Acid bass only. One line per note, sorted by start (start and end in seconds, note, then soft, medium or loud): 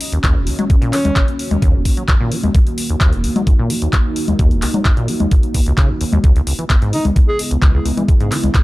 0.12 0.19 D#2 medium
0.23 0.37 D#2 loud
0.36 0.48 D#1 loud
0.47 0.53 D#2 medium
0.59 0.65 F#3 medium
0.70 0.76 F#2 medium
0.82 0.94 A#2 loud
0.93 0.99 F#3 loud
1.05 1.11 D#2 medium
1.16 1.20 C#2 loud
1.51 1.57 D#2 medium
1.62 1.76 D#2 loud
1.74 1.87 D#1 loud
1.85 1.92 D#2 medium
1.97 2.03 F#3 medium
2.09 2.15 F#2 medium
2.20 2.33 A#2 loud
2.31 2.38 F#3 loud
2.44 2.50 D#2 medium
2.55 2.59 C#2 loud
2.90 2.96 D#2 medium
3.01 3.14 D#2 loud
3.13 3.25 D#1 loud
3.24 3.30 D#2 medium
3.36 3.42 F#3 medium
3.47 3.53 F#2 medium
3.59 3.72 A#2 medium
3.70 3.77 F#3 medium
3.82 3.88 D#2 medium
3.93 3.97 C#2 loud
4.28 4.34 D#2 medium
4.39 4.53 D#2 loud
4.51 4.64 D#1 loud
4.62 4.69 D#2 medium
4.74 4.80 F#3 medium
4.85 4.92 F#2 medium
4.97 5.10 A#2 loud
5.08 5.15 F#3 loud
5.20 5.26 D#2 medium
5.31 5.35 C#2 loud
5.54 5.61 E2 medium
5.66 5.73 C#2 loud
5.78 5.91 C#3 loud
5.89 5.93 D#2 loud
6.01 6.05 D#2 medium
6.12 6.19 D#2 loud
6.24 6.34 C#2 loud
6.35 6.42 C#2 loud
6.47 6.53 C#2 medium
6.59 6.65 E3 medium
6.70 6.76 E2 medium
6.82 6.95 G#2 loud
6.93 7.00 E3 loud
7.05 7.11 C#2 medium
7.16 7.20 B1 loud
7.51 7.57 C#2 medium
7.62 7.72 C#2 loud
7.74 7.80 C#2 loud
7.85 7.92 C#2 medium
7.97 8.03 E3 medium
8.08 8.15 E2 medium
8.20 8.33 G#2 loud
8.31 8.38 E3 loud
8.43 8.50 C#2 medium
8.55 8.58 B1 loud